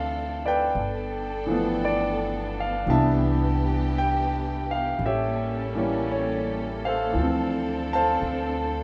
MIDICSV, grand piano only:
0, 0, Header, 1, 2, 480
1, 0, Start_track
1, 0, Key_signature, 0, "major"
1, 0, Tempo, 1069519
1, 1293, Time_signature, 4, 2, 24, 8
1, 3964, End_track
2, 0, Start_track
2, 0, Title_t, "Grand piano"
2, 0, Program_c, 0, 0
2, 0, Control_c, 0, 64, 127
2, 0, Note_on_c, 0, 52, 42
2, 0, Note_on_c, 0, 53, 37
2, 0, Note_on_c, 0, 57, 37
2, 0, Note_on_c, 0, 60, 45
2, 0, Note_on_c, 0, 69, 37
2, 0, Note_on_c, 0, 72, 36
2, 0, Note_on_c, 0, 76, 53
2, 0, Note_on_c, 0, 77, 67
2, 184, Note_off_c, 0, 69, 0
2, 186, Note_off_c, 0, 72, 0
2, 205, Note_on_c, 0, 74, 54
2, 209, Note_on_c, 0, 71, 55
2, 212, Note_off_c, 0, 77, 0
2, 214, Note_on_c, 0, 79, 73
2, 340, Note_off_c, 0, 52, 0
2, 341, Note_off_c, 0, 53, 0
2, 341, Note_off_c, 0, 57, 0
2, 342, Note_off_c, 0, 60, 0
2, 345, Control_c, 0, 64, 0
2, 346, Note_off_c, 0, 76, 0
2, 412, Control_c, 0, 64, 127
2, 657, Note_on_c, 0, 52, 40
2, 666, Note_on_c, 0, 53, 36
2, 673, Note_on_c, 0, 57, 35
2, 679, Note_on_c, 0, 59, 43
2, 822, Note_off_c, 0, 74, 0
2, 829, Note_on_c, 0, 74, 65
2, 846, Note_off_c, 0, 79, 0
2, 1135, Note_off_c, 0, 71, 0
2, 1160, Note_off_c, 0, 74, 0
2, 1168, Note_on_c, 0, 77, 66
2, 1286, Note_off_c, 0, 52, 0
2, 1289, Note_off_c, 0, 59, 0
2, 1291, Note_off_c, 0, 53, 0
2, 1292, Note_on_c, 0, 52, 42
2, 1293, Note_on_c, 0, 55, 39
2, 1295, Note_off_c, 0, 57, 0
2, 1296, Note_on_c, 0, 59, 39
2, 1299, Control_c, 0, 64, 0
2, 1299, Note_on_c, 0, 62, 48
2, 1301, Note_on_c, 0, 81, 72
2, 1306, Note_on_c, 0, 76, 53
2, 1309, Note_off_c, 0, 77, 0
2, 1384, Control_c, 0, 64, 127
2, 1757, Note_off_c, 0, 81, 0
2, 1787, Note_on_c, 0, 79, 72
2, 2114, Note_on_c, 0, 77, 69
2, 2118, Note_off_c, 0, 79, 0
2, 2238, Note_off_c, 0, 76, 0
2, 2246, Note_off_c, 0, 77, 0
2, 2249, Note_off_c, 0, 52, 0
2, 2249, Note_off_c, 0, 55, 0
2, 2251, Note_off_c, 0, 59, 0
2, 2253, Note_off_c, 0, 62, 0
2, 2255, Control_c, 0, 64, 0
2, 2269, Note_on_c, 0, 76, 59
2, 2272, Note_on_c, 0, 67, 45
2, 2272, Note_on_c, 0, 73, 44
2, 2338, Control_c, 0, 64, 127
2, 2581, Note_on_c, 0, 52, 40
2, 2586, Note_on_c, 0, 55, 37
2, 2586, Note_on_c, 0, 58, 40
2, 2590, Note_on_c, 0, 61, 45
2, 2737, Note_off_c, 0, 73, 0
2, 2744, Note_on_c, 0, 73, 54
2, 2755, Note_off_c, 0, 76, 0
2, 3052, Note_off_c, 0, 73, 0
2, 3075, Note_on_c, 0, 77, 63
2, 3079, Note_on_c, 0, 72, 42
2, 3086, Note_on_c, 0, 69, 44
2, 3191, Note_off_c, 0, 52, 0
2, 3197, Note_on_c, 0, 52, 35
2, 3206, Note_off_c, 0, 67, 0
2, 3214, Note_on_c, 0, 53, 36
2, 3216, Note_off_c, 0, 55, 0
2, 3216, Note_off_c, 0, 58, 0
2, 3218, Note_off_c, 0, 61, 0
2, 3218, Control_c, 0, 64, 0
2, 3228, Note_on_c, 0, 57, 34
2, 3246, Note_on_c, 0, 60, 41
2, 3309, Control_c, 0, 64, 127
2, 3560, Note_on_c, 0, 81, 83
2, 3562, Note_off_c, 0, 72, 0
2, 3562, Note_off_c, 0, 77, 0
2, 3569, Note_on_c, 0, 72, 50
2, 3569, Note_on_c, 0, 77, 49
2, 3964, Note_off_c, 0, 52, 0
2, 3964, Note_off_c, 0, 53, 0
2, 3964, Note_off_c, 0, 57, 0
2, 3964, Note_off_c, 0, 60, 0
2, 3964, Note_off_c, 0, 69, 0
2, 3964, Note_off_c, 0, 72, 0
2, 3964, Note_off_c, 0, 77, 0
2, 3964, Note_off_c, 0, 81, 0
2, 3964, End_track
0, 0, End_of_file